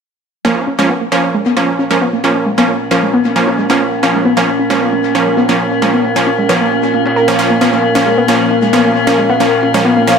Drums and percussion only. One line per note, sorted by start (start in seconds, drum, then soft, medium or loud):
0.45 closed hi-hat medium
0.56 snare soft
0.67 closed hi-hat medium
0.89 closed hi-hat medium
1.12 closed hi-hat medium
1.34 closed hi-hat medium
1.57 closed hi-hat medium
1.79 closed hi-hat medium
2.01 closed hi-hat medium
2.24 open hi-hat medium
2.46 closed hi-hat medium
2.58 closed hi-hat soft
2.69 closed hi-hat medium
2.91 closed hi-hat medium
3.13 closed hi-hat medium
3.36 closed hi-hat medium
3.47 snare soft
3.58 closed hi-hat medium
3.81 closed hi-hat medium
4.03 closed hi-hat medium
4.15 snare soft
4.25 closed hi-hat medium
4.48 closed hi-hat medium
4.70 closed hi-hat medium
4.92 closed hi-hat medium
5.15 closed hi-hat medium
5.37 closed hi-hat medium
5.60 closed hi-hat medium
5.82 open hi-hat medium
6.04 closed hi-hat medium
6.16 closed hi-hat soft
6.27 closed hi-hat medium
6.49 closed hi-hat medium
6.72 closed hi-hat medium
6.94 closed hi-hat medium
7.06 snare soft
7.16 closed hi-hat medium
7.39 closed hi-hat medium
7.61 closed hi-hat medium
7.73 snare soft
7.84 closed hi-hat medium
8.06 closed hi-hat medium
8.28 closed hi-hat medium
8.51 closed hi-hat medium
8.73 closed hi-hat medium
8.96 closed hi-hat medium
9.18 closed hi-hat medium
9.40 open hi-hat medium
9.63 closed hi-hat medium
9.74 closed hi-hat soft
9.85 closed hi-hat medium
10.07 closed hi-hat medium